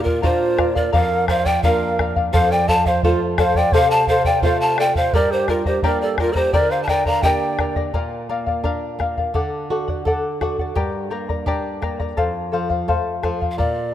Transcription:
Already playing: nylon-string guitar A#2
0.02 quena F4, pan flute A#4, charango F5, bombo low
0.06 charango D5
0.22 nylon-string guitar A#3 D4 F4, quena F#4, charango A#4 D5 F5, pan flute C5, bombo low
0.27 quena F4
0.57 charango A#4 D5 F5, bombo rim, bombo low
0.75 quena A#4, pan flute D5, charango D5 F5, bombo low
0.92 nylon-string guitar F2, charango A#4 D5 F5, quena C5, pan flute F5, bombo low
0.98 quena A#4
1.28 charango A#4 D5 F5, quena C5, pan flute F5, bombo rim, bombo low
1.46 quena D5, charango D5 F5, pan flute G5, bombo low
1.63 nylon-string guitar A#3 D4 F4, quena A#4, charango A#4 D5 F5, pan flute F5, bombo low
1.99 charango A#4 D5 F5, bombo rim, bombo low
2.16 charango D5 F5, bombo low
2.33 nylon-string guitar F2, charango A4 C5 F5, quena C5, pan flute F5, bombo low
2.52 quena D5, pan flute G5
2.68 charango A4 C5 F5, quena F5, pan flute A5, bombo low
2.86 quena C5, charango C5 F5, pan flute F5, bombo low
3.03 nylon-string guitar A3 C4 F4, quena F4, charango A4 C5 F5, pan flute C5, bombo low
3.38 charango A4 C5 F5, quena D5, pan flute F5, bombo rim, bombo low
3.42 quena C5
3.55 charango C5 F5, quena D5, pan flute G5, bombo low
3.72 nylon-string guitar C3, charango A4 C5 F5, quena C5, pan flute F5, bombo low
3.90 quena F5, pan flute A5
4.07 charango A4 C5 F5, quena C5, pan flute F5, bombo low
4.25 quena D5, charango F5, pan flute G5, bombo low
4.29 charango C5
4.42 nylon-string guitar A3 C4 F4, charango A4 C5 F5, quena C5, pan flute F5, bombo low
4.61 quena F5, pan flute A5
4.78 charango A4 C5 F5, quena D5, pan flute G5, bombo rim
4.95 quena C5, charango C5 F5, pan flute F5, bombo low
5.13 nylon-string guitar G2, charango G4 A#4 D5 G5 A#5, quena A#4, pan flute D5, bombo low
5.31 quena G4, pan flute C5
5.48 quena F4, pan flute A#4, charango A#4 D5 G5 A#5, bombo rim, bombo low
5.65 quena G4, charango A#4 D5 A#5, pan flute C5, bombo low
5.83 nylon-string guitar A#3 D4 G4, charango G4 A#4 D5 G5 A#5, quena A#4, pan flute D5, bombo low
6.02 quena A4, pan flute D5
6.18 quena F4, pan flute A#4, charango A#4 D5 G5 A#5, bombo rim, bombo low
6.32 quena A#4, pan flute C5 D5, bombo low
6.37 quena G4, charango A#4 D5 A#5
6.53 nylon-string guitar D3, charango G4 A#4 D5 G5 A#5, quena A#4, pan flute D5, bombo low
6.71 quena C5, pan flute F5
6.83 quena F5, pan flute A5
6.88 charango A#4 D5 G5 A#5, quena D5, pan flute G5, bombo rim, bombo low
7.06 charango A#4 D5 A#5, quena F5, pan flute A#5, bombo low
7.22 nylon-string guitar A#3 D4 G4, charango G4 A#4 D5 G5 A#5, quena D#5, pan flute G5, bombo low
7.28 quena D5
7.59 charango A#4 D5 G5 A#5, bombo rim, bombo low
7.76 charango A#4 D5 A#5, bombo low
7.94 nylon-string guitar A#2, charango A#4 D5 F5, bombo low
8.29 nylon-string guitar A#3, charango A#4 D5 F5
8.46 charango D5 F5, bombo low
8.64 nylon-string guitar D4, charango A#4 D5 F5, bombo low
8.99 nylon-string guitar A#3, charango A#4 D5 F5, bombo rim, bombo low
9.17 charango D5 F5, bombo low
9.34 nylon-string guitar D3, charango A4 D5 F#5, bombo low
9.70 nylon-string guitar F#4, charango A4 D5 F#5
9.88 charango D5 F#5, bombo low
10.05 nylon-string guitar A4, charango A4 D5 F#5, bombo low
10.41 nylon-string guitar F#4, charango A4 D5 F#5, bombo rim, bombo low
10.59 charango D5 F#5, bombo low
10.75 nylon-string guitar G2, charango G4 A#4 D5 G5 A#5, bombo low
11.10 nylon-string guitar A#3, charango A#4 D5 G5 A#5
11.29 charango A#4 D5 A#5, bombo low
11.46 nylon-string guitar D4, charango G4 A#4 D5 G5 A#5, bombo low
11.82 nylon-string guitar A#3, charango A#4 D5 G5 A#5, bombo rim, bombo low
12.00 charango A#4 D5 A#5, bombo low
12.17 nylon-string guitar F2, charango A4 C5 F5, bombo low
12.52 nylon-string guitar F3, charango A4 C5 F5
12.70 charango C5 F5, bombo low
12.88 nylon-string guitar A3, charango A4 C5 F5, bombo low
13.23 nylon-string guitar F3, charango A4 C5 F5, bombo rim, bombo low
13.41 charango C5 F5, bombo low
13.51 pan flute F5
13.58 nylon-string guitar A#2, charango A#4 D5 F5, pan flute D5, bombo low

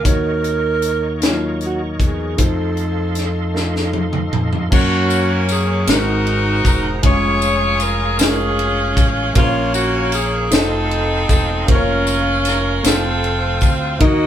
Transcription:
Already playing: tonewheel organ A#4
0.03 fingered electric bass D#2, grand piano D#3 A#3 D#4 F#4 C#5, tonewheel organ C#5 D#5 C#6, kick, closed hi-hat
0.08 alto saxophone A#4
0.44 closed hi-hat
0.82 closed hi-hat
1.20 grand piano A#3 D#4 F4 C#5, snare, closed hi-hat
1.27 grand piano F#3, alto saxophone F4
1.61 closed hi-hat
1.66 alto saxophone F#4
2.00 fingered electric bass E2, kick, closed hi-hat
2.06 alto saxophone G#4
2.36 fingered electric bass F2, grand piano A3 D#4 F4 C5, tonewheel organ A4 F5 C6, kick, closed hi-hat
2.44 alto saxophone A4
2.77 closed hi-hat
3.15 snare, closed hi-hat
3.54 grand piano A3 D#4 F4 A4, snare
3.76 snare
3.93 high tom
4.13 mid tom
4.33 fingered electric bass F2, mid tom
4.53 floor tom
4.70 fingered electric bass F#2, grand piano A#3 C#4 F#4 C#5, saxophone section A#3 C#4 F#4, tonewheel organ A#4 C#5 F#5 C#6, kick, crash
5.10 ride, tambourine
5.49 saxophone section G#4, ride, tambourine
5.87 fingered electric bass G#1, grand piano G#2 G#3 C4 F#4 A#4, saxophone section D#4 F#4 A#4, tonewheel organ G#4 C5 A#5, snare, ride, tambourine
6.26 ride
6.65 fingered electric bass E1, saxophone section A#4, kick, ride, tambourine
7.03 fingered electric bass F1, grand piano G#3 C#4 F4 C#5, saxophone section F4 G#4 C#5, tonewheel organ C#5 F5 C#6, kick, ride
7.42 ride, tambourine
7.80 saxophone section A#4, ride, tambourine
8.18 grand piano G#3 C#4 F4 G#4, saxophone section C#4 F4 G#4, snare, ride, tambourine
8.28 grand piano A#4
8.59 ride
8.97 fingered electric bass A1, kick, ride, tambourine
9.34 fingered electric bass A#1, grand piano A#2 A#3 C#4 C5 F5, saxophone section A#3 C#4 F4, tonewheel organ A#4 F5, kick, ride
9.44 grand piano C#5
9.74 saxophone section F#4, ride, tambourine
10.12 saxophone section G#4, ride, tambourine
10.50 fingered electric bass F1, grand piano A3 D#4 F4 C5, saxophone section C4 A4, tonewheel organ A4 D#5 C6, snare, ride, tambourine
10.54 saxophone section D#4
10.91 ride
11.29 fingered electric bass E1, saxophone section A4, kick, ride, tambourine
11.66 fingered electric bass F1, grand piano A#3 C#4 F4 C5, kick, ride
11.70 saxophone section C#4 F4 A#4, tonewheel organ A#4 C#5 C#6
11.75 grand piano C#5
12.07 ride, tambourine
12.45 saxophone section A#4, snare, ride, tambourine
12.82 fingered electric bass F1, grand piano A3 C4 F4 C5, tonewheel organ A4 C5 C6, snare, ride, tambourine
12.87 saxophone section C4 F4 A4
13.24 ride
13.61 fingered electric bass D2, kick, ride, tambourine
13.99 fingered electric bass D#2, grand piano D#3 A#3 D#4 F#4 D#5, saxophone section A#3 D#4, tonewheel organ A#4 D#5 F#5 D#6, kick, ride
14.03 saxophone section F#4

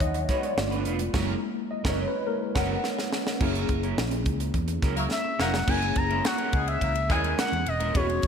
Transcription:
Already playing: tine electric piano F#3 B3 D#4 C#5 E5 F#5 G#5
0.00 fingered electric bass D#2, tine electric piano D#5, kick, closed hi-hat, low conga
0.14 muted clean electric guitar stroke, closed hi-hat
0.29 clean electric guitar G#3 D#4 F#4 B4, tine electric piano C#5, kick, snare, closed hi-hat, muted conga
0.43 tine electric piano D5, muted clean electric guitar stroke, closed hi-hat
0.57 fingered electric bass G1, tine electric piano A3 B3 F4, muted clean electric guitar stroke, snare, high conga
0.71 clean electric guitar A3 D4 F4 B4, closed hi-hat
0.85 fingered electric bass F1, clean electric guitar A3 D4 F4 B4, closed hi-hat
0.99 muted clean electric guitar stroke, closed hi-hat, high conga
1.14 fingered electric bass F#1, clean electric guitar F#3 C#4 E4 A#4, tine electric piano G#3 A#3 E4, kick, snare, crash
1.71 tine electric piano D#5
1.84 fingered electric bass F#1, clean electric guitar F#3 C#4 E4 A#4, kick, snare
1.89 tine electric piano C#5
2.08 tine electric piano B4
2.27 tine electric piano G#3 A#3 E4 A#4
2.55 fingered electric bass F#1, clean electric guitar F#3 C#4 E4 A#4, tine electric piano F#5, kick, snare, crash
2.84 snare
2.99 snare
3.13 snare
3.27 snare
3.40 fingered electric bass F#1, clean electric guitar F#3 C#4 E4 A#4, tine electric piano A#3 C#4 E4 G#4, kick, crash, muted conga
3.55 closed hi-hat
3.69 fingered electric bass F#1, muted clean electric guitar stroke, kick, closed hi-hat, muted conga
3.83 clean electric guitar F#3 C#4 E4 A#4, closed hi-hat
3.97 fingered electric bass A#1, snare, high conga
4.11 muted clean electric guitar stroke, closed hi-hat
4.26 fingered electric bass C#2, kick, closed hi-hat, low conga
4.40 muted clean electric guitar stroke, closed hi-hat
4.54 fingered electric bass E2, muted clean electric guitar stroke, kick, closed hi-hat, low conga
4.68 muted clean electric guitar stroke, closed hi-hat
4.82 fingered electric bass C#2, clean electric guitar F#3 C#4 E4 A#4, kick, snare, closed hi-hat, muted conga
4.96 horn section F#3 A#3 E4 A#4, muted clean electric guitar stroke, closed hi-hat
5.10 analog synth lead E5, muted clean electric guitar stroke, snare, high conga
5.24 muted clean electric guitar stroke
5.39 fingered electric bass F1, clean electric guitar F#3 C#4 E4 A#4, horn section F#3 A#3 E4 A#4, analog synth lead F#5, snare
5.53 muted clean electric guitar stroke, snare, high conga
5.67 fingered electric bass F#1, clean electric guitar G#3 C#4 E4 A#4, tine electric piano A#3 C#4 E4 G#4, analog synth lead G#5, kick, crash, muted conga
5.81 muted clean electric guitar stroke, ride
5.96 fingered electric bass F#1, analog synth lead A#5, muted clean electric guitar stroke, kick, ride, muted conga
6.10 horn section C#3 E3 A#3 E4, clean electric guitar G#3 C#4 E4 A#4, ride
6.24 horn section C#3 F#3 A#3 F#4, analog synth lead F#5, muted clean electric guitar stroke, snare, ride, high conga
6.38 clean electric guitar G#3 C#4 E4 A#4, ride
6.53 fingered electric bass C#2, horn section E3 G#3 C#4 G#4, muted clean electric guitar stroke, kick, ride
6.67 analog synth lead E5, muted clean electric guitar stroke, ride
6.81 fingered electric bass C#2, horn section E3 A#3 C#4 A#4, muted clean electric guitar stroke, kick, ride, low conga
6.95 muted clean electric guitar stroke, ride
7.09 fingered electric bass D#2, horn section E3 G#3 C#4 G#4, clean electric guitar G#3 C#4 E4 A#4, analog synth lead G#5, kick, snare, ride, muted conga
7.23 clean electric guitar G#3 C#4 E4 A#4, ride
7.37 clean electric guitar G#3 C#4 E4 A#4, analog synth lead F#5, snare, ride, high conga
7.51 fingered electric bass E2, muted clean electric guitar stroke, ride
7.66 fingered electric bass E1, analog synth lead D#5, muted clean electric guitar stroke, ride
7.80 fingered electric bass D#1, clean electric guitar G#3 C#4 E4 A#4, ride, high conga
7.94 fingered electric bass E1, clean electric guitar G#3 C#4 E4 B4, tine electric piano B3 C#4 F#4 G#4, analog synth lead C#5, kick, ride, muted conga
8.08 muted clean electric guitar stroke, ride
8.22 fingered electric bass E1, muted clean electric guitar stroke, kick, ride, muted conga

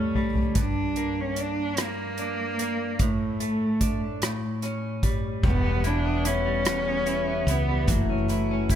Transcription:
Already playing: clean electric guitar A2 G3 C#4, cello A3
0.15 clean electric guitar G3, floor tom
0.35 floor tom
0.55 clean electric guitar G2, cello D4, kick, closed hi-hat
0.96 clean electric guitar A#3, closed hi-hat
1.21 cello C#4
1.36 clean electric guitar D4, closed hi-hat
1.41 cello D4
1.77 clean electric guitar A#3, cross-stick, closed hi-hat
1.81 cello A#3
2.18 clean electric guitar D4, closed hi-hat
2.59 clean electric guitar A#3, closed hi-hat
2.99 clean electric guitar A2, cello A3, kick, closed hi-hat
3.40 clean electric guitar A3, closed hi-hat
3.81 clean electric guitar D4, kick, closed hi-hat
4.22 clean electric guitar A2, cross-stick, closed hi-hat
4.62 clean electric guitar C#4, cross-stick, closed hi-hat
5.03 clean electric guitar G3, kick, closed hi-hat
5.43 fretless electric bass E1, clean electric guitar E2, steel-string acoustic guitar G3, cello B3, kick, crash
5.64 clean electric guitar B3
5.84 steel-string acoustic guitar G3, cello D4, clean electric guitar E4, closed hi-hat
6.05 clean electric guitar B3
6.25 steel-string acoustic guitar B3, cello C#4, clean electric guitar E4, closed hi-hat
6.46 clean electric guitar G3
6.65 clean electric guitar E2, steel-string acoustic guitar G3, cross-stick, closed hi-hat
6.87 clean electric guitar B3
7.06 steel-string acoustic guitar E4, clean electric guitar E4, closed hi-hat
7.28 clean electric guitar B3
7.47 fretless electric bass C#2, steel-string acoustic guitar B3, cello B3, clean electric guitar E4, closed hi-hat
7.69 clean electric guitar G3
7.88 fretless electric bass F#1, steel-string acoustic guitar E3, clean electric guitar F#3, cello A3, kick, closed hi-hat
8.10 clean electric guitar C#4
8.28 steel-string acoustic guitar E3, clean electric guitar E4, closed hi-hat
8.51 clean electric guitar C#4
8.69 steel-string acoustic guitar A3, clean electric guitar E4, kick, closed hi-hat

